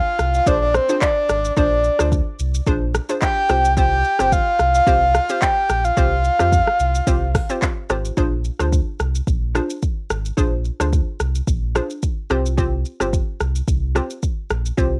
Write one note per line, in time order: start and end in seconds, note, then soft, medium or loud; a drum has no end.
0.00 0.34 F5 loud
0.19 0.40 C2 loud
0.19 cross-stick medium
0.19 shaker medium
0.34 0.48 F5 medium
0.34 shaker medium
0.46 0.79 A#1 loud
0.46 0.63 D4 medium
0.46 0.63 F4 medium
0.46 0.63 G#4 medium
0.46 0.63 C5 loud
0.46 0.61 D5 loud
0.46 kick loud
0.46 shaker medium
0.62 0.76 D5 medium
0.74 1.01 C5 medium
0.74 cross-stick loud
0.74 shaker medium
0.89 1.03 D4 medium
0.89 1.03 F4 medium
0.89 1.04 G#4 medium
0.89 1.04 C5 medium
0.89 shaker medium
1.01 1.53 D5 medium
1.01 kick medium
1.01 clap loud
1.01 shaker medium
1.29 1.50 G#1 medium
1.29 cross-stick loud
1.29 shaker medium
1.45 shaker medium
1.57 1.89 A#1 loud
1.57 1.73 D4 loud
1.57 1.73 F4 medium
1.57 1.73 G#4 medium
1.57 1.74 C5 loud
1.57 2.08 D5 medium
1.57 kick loud
1.57 shaker medium
1.84 shaker soft
1.99 2.21 D2 medium
1.99 2.13 D4 medium
1.99 2.14 F4 medium
1.99 2.14 G#4 medium
1.99 2.14 C5 medium
1.99 cross-stick loud
1.99 shaker medium
2.12 kick loud
2.12 shaker medium
2.39 2.60 C2 loud
2.39 shaker medium
2.54 shaker medium
2.67 2.99 A#1 loud
2.67 2.83 D4 medium
2.67 2.83 F4 medium
2.67 2.84 G#4 medium
2.67 2.84 C5 loud
2.67 kick loud
2.67 shaker medium
2.95 cross-stick loud
2.95 shaker medium
3.09 3.46 D4 medium
3.09 3.46 F4 medium
3.09 3.46 G#4 medium
3.09 3.47 C5 medium
3.09 shaker medium
3.22 3.73 G5 loud
3.22 kick medium
3.22 clap medium
3.22 shaker medium
3.49 4.03 C2 loud
3.49 3.75 C4 medium
3.49 3.75 F4 medium
3.49 3.75 G4 medium
3.49 3.75 C5 medium
3.49 cross-stick loud
3.49 shaker medium
3.65 shaker medium
3.77 3.93 C4 medium
3.77 3.94 F4 medium
3.77 3.94 G4 medium
3.77 3.94 C5 loud
3.77 4.34 G5 loud
3.77 kick loud
3.77 shaker medium
4.04 shaker soft
4.19 4.41 G1 medium
4.19 4.34 C4 medium
4.19 4.34 F4 medium
4.19 4.34 G4 medium
4.19 4.34 C5 medium
4.19 cross-stick medium
4.19 shaker medium
4.32 4.74 F5 loud
4.32 kick loud
4.32 shaker medium
4.59 4.81 C2 loud
4.59 cross-stick medium
4.59 shaker medium
4.75 5.44 F5 loud
4.75 shaker medium
4.87 5.20 C2 loud
4.87 5.03 C4 medium
4.87 5.04 F4 medium
4.87 5.04 G4 medium
4.87 5.04 C5 loud
4.87 kick loud
4.87 shaker medium
5.15 cross-stick loud
5.15 shaker medium
5.29 5.44 C4 medium
5.29 5.44 F4 medium
5.29 5.44 G4 medium
5.29 5.44 C5 medium
5.29 shaker medium
5.42 5.86 G5 loud
5.42 kick medium
5.42 clap medium
5.42 shaker medium
5.69 5.91 A#1 loud
5.69 cross-stick loud
5.69 shaker medium
5.85 7.62 F5 loud
5.85 shaker medium
5.97 6.30 C2 loud
5.97 6.14 C4 medium
5.97 6.14 F4 medium
5.97 6.14 G4 medium
5.97 6.14 C5 loud
5.97 kick loud
5.97 shaker medium
6.24 shaker soft
6.39 6.61 F2 medium
6.39 6.54 C4 medium
6.39 6.54 F4 medium
6.39 6.54 G4 medium
6.39 6.54 C5 medium
6.39 cross-stick loud
6.39 shaker medium
6.52 kick loud
6.52 shaker medium
6.67 cross-stick medium
6.80 7.01 C2 medium
6.80 shaker medium
6.95 shaker medium
7.07 7.40 C2 loud
7.07 7.24 C4 medium
7.07 7.24 F4 medium
7.07 7.24 G4 medium
7.07 7.24 C5 loud
7.07 kick loud
7.07 shaker medium
7.35 kick loud
7.35 cross-stick loud
7.35 open hi-hat medium
7.35 shaker medium
7.50 7.87 C4 medium
7.50 7.87 F4 medium
7.50 7.87 G4 medium
7.50 7.87 C5 medium
7.50 shaker medium
7.62 kick medium
7.62 clap medium
7.62 shaker medium
7.90 8.11 G#1 medium
7.90 8.15 C4 medium
7.90 8.15 F4 medium
7.90 8.15 G4 medium
7.90 8.15 C5 medium
7.90 cross-stick loud
7.90 shaker medium
8.05 shaker medium
8.17 8.50 A#1 loud
8.17 8.34 D4 medium
8.17 8.34 F4 medium
8.17 8.34 G#4 medium
8.17 8.34 C5 loud
8.17 kick loud
8.17 shaker medium
8.44 shaker soft
8.59 8.81 D2 medium
8.59 8.74 D4 medium
8.59 8.74 F4 medium
8.59 8.74 G#4 medium
8.59 8.74 C5 medium
8.59 cross-stick medium
8.59 shaker medium
8.72 kick loud
8.72 shaker medium
9.00 9.21 C2 medium
9.00 cross-stick medium
9.00 shaker medium
9.15 shaker medium
9.27 9.60 A#1 loud
9.27 kick loud
9.27 shaker medium
9.55 9.71 D4 medium
9.55 9.72 F4 medium
9.55 9.72 G#4 medium
9.55 9.72 C5 medium
9.55 cross-stick loud
9.55 shaker medium
9.70 shaker medium
9.82 kick medium
9.82 shaker medium
10.10 10.31 G#1 medium
10.10 cross-stick loud
10.10 shaker medium
10.25 shaker medium
10.37 10.70 A#1 loud
10.37 10.54 D4 medium
10.37 10.54 F4 medium
10.37 10.54 G#4 medium
10.37 10.54 C5 loud
10.37 kick loud
10.37 shaker medium
10.65 shaker soft
10.80 11.01 D2 medium
10.80 10.94 D4 medium
10.80 10.94 F4 medium
10.80 10.94 G#4 medium
10.80 10.95 C5 medium
10.80 cross-stick medium
10.80 shaker medium
10.93 kick loud
10.93 shaker medium
11.20 11.41 C2 medium
11.20 cross-stick medium
11.20 shaker medium
11.35 shaker medium
11.47 11.80 A#1 loud
11.47 kick loud
11.47 shaker medium
11.75 11.92 D4 medium
11.75 11.92 F4 medium
11.75 11.92 G#4 medium
11.75 11.92 C5 medium
11.75 cross-stick loud
11.75 shaker medium
11.90 shaker medium
12.02 kick medium
12.02 shaker medium
12.30 12.84 C2 loud
12.30 12.56 C4 loud
12.30 12.56 F4 medium
12.30 12.56 G4 medium
12.30 12.56 C5 loud
12.30 cross-stick medium
12.30 shaker medium
12.46 shaker medium
12.57 12.74 C4 medium
12.57 12.74 F4 medium
12.57 12.74 G4 medium
12.57 12.74 C5 loud
12.57 kick loud
12.57 shaker medium
12.85 shaker soft
13.00 13.21 G1 medium
13.00 13.14 C4 medium
13.00 13.14 F4 medium
13.00 13.15 G4 medium
13.00 13.15 C5 medium
13.00 cross-stick medium
13.00 shaker medium
13.13 kick loud
13.13 shaker medium
13.40 13.61 C2 medium
13.40 cross-stick medium
13.40 shaker medium
13.55 shaker medium
13.68 14.00 C2 loud
13.68 kick loud
13.68 shaker medium
13.95 14.12 C4 medium
13.95 14.12 F4 medium
13.95 14.12 G4 medium
13.95 14.12 C5 medium
13.95 cross-stick loud
13.95 shaker medium
14.10 shaker medium
14.23 kick medium
14.23 shaker medium
14.50 14.71 A#1 medium
14.50 cross-stick loud
14.50 shaker medium
14.66 shaker medium
14.77 15.00 C2 loud
14.77 14.94 C4 medium
14.77 14.94 F4 medium
14.77 14.94 G4 medium
14.77 14.95 C5 loud
14.77 kick loud
14.77 shaker medium